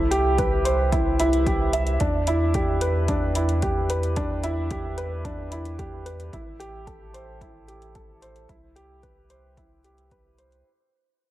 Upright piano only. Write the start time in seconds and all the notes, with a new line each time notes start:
Already playing: E4
0.11 G4
0.38 B4
0.65 C5
0.92 E4
1.20 E4
1.47 G4
1.73 E5
2.00 D4
2.27 E4
2.54 G4
2.81 B4
3.08 D4
3.36 E4
3.63 G4
3.90 B4
4.17 D4
4.44 E4
4.70 G4
4.97 B4
5.25 D4
5.52 E4
5.79 G4
6.06 B4
6.33 E4
6.60 G4
6.87 A4
7.14 C5
7.41 E4
7.68 G4
7.95 A4
8.22 C5
8.49 E4
8.76 G4
9.03 B4
9.30 C5
9.57 E4
9.84 G4
10.12 B4
10.38 C5